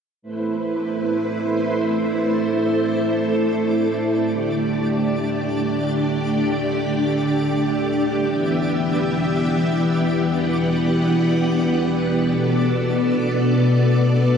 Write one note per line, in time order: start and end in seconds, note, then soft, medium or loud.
0.22 8.25 A3 medium
0.22 14.38 D4 medium
0.22 4.22 E4 medium
0.22 2.22 B4 medium
0.22 4.22 C5 medium
0.22 14.38 D5 medium
2.24 4.24 A4 medium
4.26 8.25 D3 medium
4.26 12.28 G4 medium
4.26 8.25 D5 medium
8.29 12.28 E3 medium
8.29 14.38 B3 medium
8.29 10.29 E5 medium
10.31 12.30 F#5 medium
12.32 14.38 B2 medium
12.32 14.38 A4 medium
12.32 14.38 D5 medium